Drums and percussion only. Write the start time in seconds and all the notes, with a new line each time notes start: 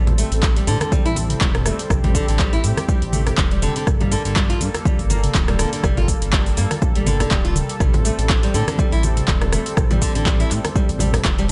0.07 closed hi-hat, muted conga, high conga, low conga
0.18 open hi-hat, shaker
0.32 closed hi-hat, shaker
0.42 kick, clap, muted conga, shaker
0.56 closed hi-hat
0.67 open hi-hat, shaker
0.80 cross-stick, closed hi-hat, muted conga, high conga, shaker
0.92 kick, high conga, shaker
1.06 open hi-hat
1.16 open hi-hat, muted conga, high conga, shaker
1.30 closed hi-hat, mid tom, shaker
1.41 kick, clap, high conga, shaker
1.55 cross-stick, closed hi-hat, low conga
1.66 cross-stick, open hi-hat, muted conga, high conga, shaker
1.79 closed hi-hat, shaker
1.90 kick, cross-stick, mid tom, shaker
2.04 closed hi-hat, muted conga, high conga, low conga
2.15 kick, open hi-hat, shaker
2.28 closed hi-hat, shaker
2.39 kick, clap, muted conga, shaker
2.53 open hi-hat
2.64 open hi-hat, shaker
2.77 cross-stick, closed hi-hat, muted conga, high conga, shaker
2.88 kick, low conga, shaker
3.02 closed hi-hat
3.12 open hi-hat, mid tom, muted conga, high conga, shaker
3.27 cross-stick, closed hi-hat, low conga, shaker
3.38 kick, clap, high conga, shaker
3.51 closed hi-hat
3.62 open hi-hat, mid tom, muted conga, shaker
3.76 closed hi-hat, shaker
3.87 kick, cross-stick, mid tom, shaker
4.00 closed hi-hat, muted conga, high conga, low conga
4.12 open hi-hat, shaker
4.25 closed hi-hat, shaker
4.36 kick, clap, shaker
4.50 closed hi-hat
4.61 open hi-hat, shaker
4.74 cross-stick, closed hi-hat, muted conga, high conga, shaker
4.85 kick, high conga, shaker
4.99 open hi-hat
5.10 open hi-hat, muted conga, high conga, shaker
5.24 closed hi-hat, mid tom, shaker
5.35 kick, clap, high conga, shaker
5.48 cross-stick, closed hi-hat, low conga
5.59 cross-stick, open hi-hat, muted conga, high conga, shaker
5.73 closed hi-hat, shaker
5.84 kick, cross-stick, mid tom, shaker
5.97 closed hi-hat, muted conga, high conga, low conga
6.08 kick, open hi-hat, shaker
6.22 closed hi-hat, shaker
6.33 kick, clap, muted conga, shaker
6.46 open hi-hat
6.57 open hi-hat, shaker
6.71 cross-stick, closed hi-hat, muted conga, high conga, shaker
6.82 kick, low conga, shaker
6.95 closed hi-hat
7.06 open hi-hat, mid tom, muted conga, high conga, shaker
7.20 cross-stick, closed hi-hat, low conga, shaker
7.31 kick, clap, high conga, shaker
7.45 closed hi-hat
7.56 open hi-hat, mid tom, muted conga, shaker
7.69 closed hi-hat, shaker
7.80 kick, cross-stick, mid tom, shaker
7.94 closed hi-hat, muted conga, high conga, low conga
8.05 open hi-hat, shaker
8.19 closed hi-hat, shaker
8.29 kick, clap, muted conga, shaker
8.43 closed hi-hat
8.54 open hi-hat, shaker
8.68 cross-stick, closed hi-hat, muted conga, high conga, shaker
8.78 kick, high conga, shaker
8.92 open hi-hat
9.03 open hi-hat, muted conga, high conga, shaker
9.17 closed hi-hat, mid tom, shaker
9.28 kick, clap, high conga, shaker
9.42 cross-stick, closed hi-hat, low conga
9.53 cross-stick, open hi-hat, muted conga, high conga, shaker
9.66 closed hi-hat, shaker
9.77 kick, cross-stick, mid tom, shaker
9.91 closed hi-hat, muted conga, high conga, low conga, shaker
10.02 kick, open hi-hat, shaker
10.15 closed hi-hat, shaker
10.26 kick, clap, shaker
10.40 open hi-hat
10.51 clap, open hi-hat, shaker
10.64 cross-stick, closed hi-hat, muted conga, high conga, shaker
10.75 kick, low conga, shaker
10.89 closed hi-hat, shaker
10.99 open hi-hat, mid tom, muted conga, high conga, low conga, shaker
11.14 cross-stick, closed hi-hat, low conga, shaker
11.25 kick, clap, high conga, shaker
11.38 closed hi-hat, shaker
11.48 muted conga